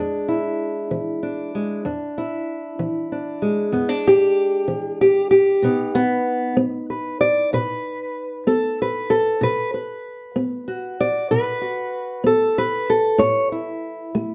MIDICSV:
0, 0, Header, 1, 2, 480
1, 0, Start_track
1, 0, Tempo, 630054
1, 1415, Time_signature, 12, 3, 24, 8
1, 10929, End_track
2, 0, Start_track
2, 0, Title_t, "Steel-string acoustic guitar"
2, 0, Program_c, 0, 25
2, 0, Note_on_c, 0, 40, 79
2, 0, Note_on_c, 0, 56, 52
2, 0, Note_on_c, 0, 62, 53
2, 217, Note_on_c, 0, 64, 50
2, 405, Note_off_c, 0, 40, 0
2, 693, Note_on_c, 0, 52, 64
2, 927, Note_off_c, 0, 62, 0
2, 936, Note_on_c, 0, 62, 46
2, 1126, Note_off_c, 0, 52, 0
2, 1171, Note_off_c, 0, 56, 0
2, 1180, Note_on_c, 0, 56, 50
2, 1387, Note_off_c, 0, 62, 0
2, 1389, Note_off_c, 0, 56, 0
2, 1408, Note_on_c, 0, 40, 73
2, 1413, Note_on_c, 0, 62, 52
2, 1650, Note_off_c, 0, 64, 0
2, 1659, Note_on_c, 0, 64, 50
2, 1844, Note_off_c, 0, 40, 0
2, 2127, Note_on_c, 0, 52, 73
2, 2368, Note_off_c, 0, 62, 0
2, 2377, Note_on_c, 0, 62, 51
2, 2564, Note_off_c, 0, 52, 0
2, 2606, Note_on_c, 0, 56, 47
2, 2836, Note_on_c, 0, 40, 74
2, 2839, Note_off_c, 0, 62, 0
2, 2842, Note_on_c, 0, 59, 50
2, 2963, Note_off_c, 0, 59, 0
2, 2963, Note_on_c, 0, 62, 43
2, 3098, Note_off_c, 0, 64, 0
2, 3104, Note_on_c, 0, 67, 90
2, 3278, Note_off_c, 0, 40, 0
2, 3564, Note_on_c, 0, 52, 68
2, 3809, Note_off_c, 0, 67, 0
2, 3818, Note_on_c, 0, 67, 89
2, 4002, Note_off_c, 0, 52, 0
2, 4035, Note_off_c, 0, 67, 0
2, 4044, Note_on_c, 0, 67, 89
2, 4263, Note_off_c, 0, 56, 0
2, 4285, Note_on_c, 0, 47, 76
2, 4290, Note_off_c, 0, 62, 0
2, 4295, Note_on_c, 0, 59, 49
2, 4300, Note_on_c, 0, 63, 55
2, 4530, Note_off_c, 0, 67, 0
2, 4533, Note_off_c, 0, 59, 0
2, 4533, Note_on_c, 0, 59, 104
2, 4723, Note_off_c, 0, 47, 0
2, 4993, Note_off_c, 0, 59, 0
2, 5002, Note_on_c, 0, 59, 78
2, 5257, Note_on_c, 0, 71, 50
2, 5442, Note_off_c, 0, 59, 0
2, 5487, Note_off_c, 0, 71, 0
2, 5490, Note_on_c, 0, 74, 102
2, 5734, Note_off_c, 0, 74, 0
2, 5736, Note_on_c, 0, 47, 77
2, 5743, Note_on_c, 0, 71, 97
2, 6169, Note_off_c, 0, 47, 0
2, 6452, Note_on_c, 0, 59, 68
2, 6455, Note_on_c, 0, 69, 91
2, 6461, Note_off_c, 0, 71, 0
2, 6696, Note_off_c, 0, 69, 0
2, 6718, Note_on_c, 0, 71, 92
2, 6888, Note_off_c, 0, 59, 0
2, 6933, Note_on_c, 0, 69, 90
2, 6948, Note_off_c, 0, 71, 0
2, 7151, Note_off_c, 0, 63, 0
2, 7169, Note_on_c, 0, 47, 81
2, 7176, Note_off_c, 0, 69, 0
2, 7186, Note_on_c, 0, 71, 102
2, 7411, Note_off_c, 0, 71, 0
2, 7420, Note_on_c, 0, 71, 48
2, 7606, Note_off_c, 0, 47, 0
2, 7891, Note_on_c, 0, 59, 70
2, 8135, Note_on_c, 0, 66, 51
2, 8327, Note_off_c, 0, 59, 0
2, 8380, Note_off_c, 0, 71, 0
2, 8384, Note_on_c, 0, 74, 105
2, 8613, Note_off_c, 0, 74, 0
2, 8616, Note_on_c, 0, 71, 92
2, 8620, Note_on_c, 0, 47, 80
2, 8840, Note_off_c, 0, 66, 0
2, 8849, Note_on_c, 0, 66, 48
2, 9052, Note_off_c, 0, 47, 0
2, 9323, Note_on_c, 0, 59, 73
2, 9335, Note_off_c, 0, 66, 0
2, 9338, Note_off_c, 0, 71, 0
2, 9344, Note_on_c, 0, 69, 91
2, 9582, Note_off_c, 0, 69, 0
2, 9586, Note_on_c, 0, 71, 97
2, 9764, Note_off_c, 0, 59, 0
2, 9823, Note_off_c, 0, 71, 0
2, 9825, Note_on_c, 0, 69, 89
2, 10044, Note_on_c, 0, 45, 86
2, 10051, Note_on_c, 0, 73, 103
2, 10063, Note_off_c, 0, 69, 0
2, 10296, Note_off_c, 0, 73, 0
2, 10301, Note_on_c, 0, 64, 51
2, 10484, Note_off_c, 0, 45, 0
2, 10778, Note_on_c, 0, 57, 74
2, 10929, Note_off_c, 0, 57, 0
2, 10929, Note_off_c, 0, 64, 0
2, 10929, End_track
0, 0, End_of_file